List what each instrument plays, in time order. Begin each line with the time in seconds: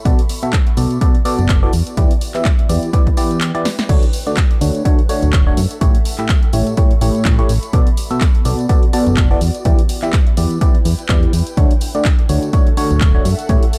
Already playing: ambient pad A4 E5 B5 C#6
0.05 fm bass B1, fm electric piano B2 B3 F#4 A4 D5, ambient pad B3, kick, closed hi-hat, tambourine
0.19 closed hi-hat
0.25 ambient pad F#4
0.29 open hi-hat, tambourine
0.42 fm electric piano B2 B3 F#4 A4 E5, closed hi-hat, tambourine
0.53 kick, clap, closed hi-hat
0.67 closed hi-hat
0.77 fm bass B1, fm electric piano B2 B3 F#4 A4 D5, ambient pad D5, open hi-hat, tambourine
0.90 closed hi-hat, tambourine
1.01 fm electric piano B2 B3 F#4 A4 D5, kick, closed hi-hat, tambourine
1.15 closed hi-hat
1.25 fm electric piano B2 B3 F#4 A4 D5, open hi-hat, tambourine
1.39 fm bass F#1, closed hi-hat, tambourine
1.49 kick, clap, closed hi-hat
1.63 fm electric piano E3 B3 F#4 A4 D5
1.73 fm bass E2, ambient pad E4, open hi-hat, tambourine
1.87 ambient pad B4, closed hi-hat, tambourine
1.97 fm bass E2, fm electric piano E3 B3 E4 G4 D5, kick, closed hi-hat, tambourine
2.11 closed hi-hat
2.21 open hi-hat, tambourine
2.34 fm electric piano E3 B3 E4 G4 E5, clap, closed hi-hat, tambourine
2.45 kick, clap, closed hi-hat, tambourine
2.59 closed hi-hat
2.66 fm bass E2, fm electric piano E3 B3 E4 G4 D5, ambient pad G5, open hi-hat, tambourine
2.82 closed hi-hat, tambourine
2.93 fm electric piano E3 B3 E4 G4 D5, kick, closed hi-hat, tambourine
3.07 kick, closed hi-hat
3.17 fm electric piano E3 B3 E4 G4 D5, open hi-hat, tambourine
3.31 closed hi-hat, tambourine
3.41 clap, closed hi-hat, tambourine
3.55 fm electric piano E3 B3 E4 G4 D5, closed hi-hat
3.65 snare, open hi-hat, tambourine
3.79 snare, closed hi-hat, tambourine
3.89 fm bass D2, fm electric piano D3 A3 D4 F#4 C#5, ambient pad D4, kick, closed hi-hat, crash, tambourine
4.03 closed hi-hat
4.13 ambient pad A4, open hi-hat, tambourine
4.27 fm electric piano D3 A3 D4 F#4 D5, closed hi-hat, tambourine
4.37 kick, clap, closed hi-hat, tambourine
4.42 ambient pad E5
4.51 closed hi-hat
4.61 fm bass D2, fm electric piano D3 A3 D4 F#4 C#5, open hi-hat, tambourine
4.67 ambient pad F#5
4.75 closed hi-hat, tambourine
4.85 fm electric piano D3 A3 D4 F#4 C#5, kick, closed hi-hat, tambourine
4.99 closed hi-hat
5.09 fm electric piano D3 A3 D4 F#4 C#5, open hi-hat, tambourine
5.22 fm bass D1, closed hi-hat, tambourine
5.33 kick, clap, closed hi-hat, tambourine
5.47 fm electric piano D3 A3 D4 F#4 C#5
5.57 fm bass F#2, open hi-hat, tambourine
5.70 closed hi-hat, tambourine
5.81 fm bass A1, fm electric piano A2 A3 E4 G4 C#5, kick, closed hi-hat, tambourine
5.95 closed hi-hat
6.05 ambient pad C#6, open hi-hat, tambourine
6.18 fm electric piano A2 A3 E4 G4 E5, clap, closed hi-hat, tambourine
6.29 kick, clap, closed hi-hat, tambourine
6.43 closed hi-hat
6.49 ambient pad B5, tambourine
6.53 fm bass A1, fm electric piano A2 A3 E4 G4 C#5, open hi-hat
6.67 closed hi-hat, tambourine
6.77 fm electric piano A2 A3 E4 G4 C#5, kick, closed hi-hat, tambourine
6.91 closed hi-hat
7.01 fm bass A1, fm electric piano A2 A3 E4 G4 C#5, open hi-hat, tambourine
7.15 closed hi-hat, tambourine
7.25 fm bass A1, kick, clap, closed hi-hat, tambourine
7.39 fm electric piano A2 A3 E4 G4 C#5, closed hi-hat
7.49 fm bass A1, open hi-hat, tambourine
7.63 closed hi-hat, tambourine
7.73 fm bass B1, fm electric piano B2 B3 F#4 A4 D5, ambient pad B3, kick, closed hi-hat, tambourine
7.87 closed hi-hat
7.97 open hi-hat, tambourine
8.02 ambient pad D5
8.10 fm electric piano B2 B3 F#4 A4 E5, ambient pad F#4, closed hi-hat, tambourine
8.21 kick, clap, closed hi-hat, tambourine
8.35 closed hi-hat
8.45 fm bass B1, fm electric piano B2 B3 F#4 A4 D5, open hi-hat, tambourine
8.59 closed hi-hat, tambourine
8.69 fm electric piano B2 B3 F#4 A4 D5, kick, closed hi-hat, tambourine
8.83 closed hi-hat
8.93 fm electric piano B2 B3 F#4 A4 D5, open hi-hat, tambourine
9.07 fm bass F#1, closed hi-hat, tambourine
9.17 kick, clap, closed hi-hat, tambourine
9.31 fm electric piano E3 B3 F#4 A4 D5
9.41 fm bass E2, ambient pad E4, open hi-hat, tambourine
9.55 closed hi-hat, tambourine
9.65 fm bass E2, fm electric piano E3 B3 E4 G4 D5, kick, closed hi-hat
9.78 ambient pad B4, closed hi-hat
9.89 open hi-hat, tambourine
10.02 fm electric piano E3 B3 E4 G4 E5, ambient pad G5, clap, closed hi-hat, tambourine
10.13 kick, clap, closed hi-hat, tambourine
10.27 closed hi-hat
10.37 fm bass E2, fm electric piano E3 B3 E4 G4 D5, open hi-hat, tambourine
10.50 closed hi-hat, tambourine
10.61 fm electric piano E3 B3 E4 G4 D5, kick, closed hi-hat, tambourine
10.75 closed hi-hat
10.85 fm bass E2, open hi-hat, tambourine
10.99 closed hi-hat, tambourine
11.09 fm bass E2, fm electric piano E3 B3 E4 G4 D5, kick, clap, closed hi-hat
11.23 closed hi-hat
11.33 fm bass E2, open hi-hat, tambourine
11.46 closed hi-hat, tambourine
11.57 fm bass D2, fm electric piano D3 A3 D4 F#4 C#5, ambient pad D4, kick, closed hi-hat
11.65 ambient pad A4
11.71 closed hi-hat
11.81 open hi-hat, tambourine
11.95 fm electric piano D3 A3 D4 F#4 D5, closed hi-hat, tambourine
12.05 ambient pad E5, kick, clap, closed hi-hat, tambourine
12.14 ambient pad F#5
12.19 closed hi-hat
12.29 fm bass D2, fm electric piano D3 A3 D4 F#4 C#5, open hi-hat, tambourine
12.42 closed hi-hat, tambourine
12.53 fm electric piano D3 A3 D4 F#4 C#5, kick, closed hi-hat, tambourine
12.67 closed hi-hat
12.77 fm electric piano D3 A3 D4 F#4 C#5, open hi-hat, tambourine
12.91 fm bass D1, closed hi-hat, tambourine
13.01 kick, clap, closed hi-hat, tambourine
13.15 fm electric piano D3 A3 D4 F#4 C#5
13.25 fm bass F#2, open hi-hat, tambourine
13.39 closed hi-hat, tambourine
13.49 fm bass A1, fm electric piano A2 A3 E4 G4 C#5, kick, closed hi-hat, tambourine
13.63 closed hi-hat
13.73 ambient pad B5, open hi-hat, tambourine